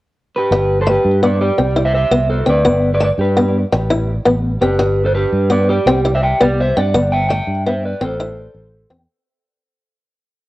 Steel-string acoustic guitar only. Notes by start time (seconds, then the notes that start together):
0.52 muted steel-string acoustic guitar stroke
0.87 A3
1.23 B3
1.58 C4
1.76 E4
2.11 B3
2.46 C4
2.65 B3
3.00 A3
3.37 B3
3.72 muted steel-string acoustic guitar stroke
3.90 E4
4.25 B3
4.62 C4
4.79 muted steel-string acoustic guitar stroke
5.50 B3
5.87 C4
6.05 E4
6.40 B3
6.77 C4
6.94 B3
7.30 A3
7.66 B3
8.01 C4
8.20 E4
8.90 C4